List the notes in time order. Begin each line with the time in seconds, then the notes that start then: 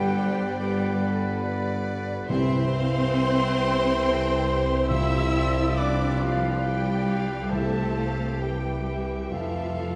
Already playing: G1 D3 G3 G4 B4 D5 G5
0.18 C5
0.58 D3 G3 G4 B4 G5
1.02 A4
1.45 B4 D5
1.88 B4
2.27 C2 C3 E3 C4 E4 G4 C5 E5 C6
2.72 F5
3.16 G5
4.01 A4
4.48 G4
4.88 C3 F3 E4 F4 G4 E5 E6
5.33 D5
5.76 D4 B4 D5 D6
6.20 F3 F4 F5
6.63 G3 G4 D5 G5
7.05 F5
7.49 C2 C3 A3 E4 G4 A4 C5 E5 A5
7.54 G4
7.96 F5
8.40 E3 G3 G4 B4 G5
8.88 E5
9.31 F1 F2 F3 F4 A4 F5
9.35 E4 A4